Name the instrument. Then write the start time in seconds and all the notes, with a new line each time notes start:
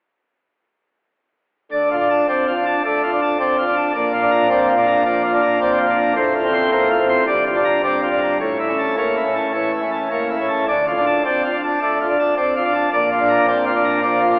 pipe organ
1.72 D2 D3 D5
1.91 F4
2.00 D4
2.10 A5
2.29 C4 D5
2.47 F4
2.57 D4
2.66 A5
2.85 A3 D5
3.03 F4
3.12 D4
3.22 A5
3.40 C4 D5
3.58 F4
3.68 D4
3.76 A5
3.95 A#1 A#2 D5
4.13 F4
4.22 D4
4.31 A#5
4.50 C4 D5
4.69 F4
4.78 D4
4.87 A#5
5.05 F3 D5
5.24 F4
5.33 D4
5.42 A#5
5.61 C4 D5
5.79 F4
5.89 D4
5.98 A#5
6.17 A1 A2 C5
6.35 F4
6.45 C4
6.53 C6
6.72 A#3 C5
6.90 F4
7.00 C4
7.09 C6
7.27 G1 G2 D5
7.46 F4
7.55 D4
7.64 A#5
7.84 C4 D5
8.03 F4
8.12 D4
8.21 A#5
8.40 A1 A2 C#5
8.59 E4
8.69 C#4
8.79 A5
8.97 A#3 C#5
9.17 E4
9.26 C#4
9.36 A5
9.54 E3 C#5
9.73 E4
9.82 C#4
9.92 A5
10.11 A#3 C#5
10.30 E4
10.40 C#4
10.49 A5
10.68 D2 D3 D5
10.87 F4
10.97 D4
11.06 A5
11.25 C4 D5
11.44 F4
11.54 D4
11.63 A5
11.82 A3 D5
12.01 F4
12.10 D4
12.19 A5
12.38 C4 D5
12.56 F4
12.65 D4
12.74 A5
12.93 A#1 A#2 D5
13.12 F4
13.21 D4
13.29 A#5
13.48 C4 D5
13.66 F4
13.75 D4
13.84 A#5
14.03 F3 D5
14.21 F4
14.31 D4